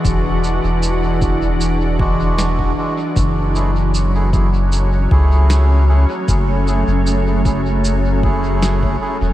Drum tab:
SH |x-x-x-x-x---x---|x-x-x-x-x---x---|x-x-x-x-x---x---|
SD |------------o---|------------o---|------------o---|
BD |o-----o---o--o--|o-----o---o-----|o-----o---o--o--|